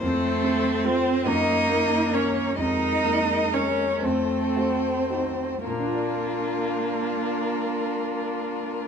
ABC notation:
X:1
M:6/8
L:1/16
Q:3/8=39
K:Fphr
V:1 name="Violin"
=A4 c2 e4 d2 | e4 d2 c6 | B12 |]
V:2 name="Violin"
c6 B6 | B6 =A4- A z | F12 |]
V:3 name="Grand piano"
F,,2 [C=A]2 [FA]2 G,,2 [B,B]2 [DB]2 | F,,2 [B,B]2 [DB]2 F,,2 [=A,G]2 [EG]2 | [B,,B,=DF=d]12 |]
V:4 name="Cello"
=A,4 C2 E4 D2 | E4 D2 C6 | B,12 |]
V:5 name="Viola"
C6 B,6 | A,6 =A,3 z3 | =D12 |]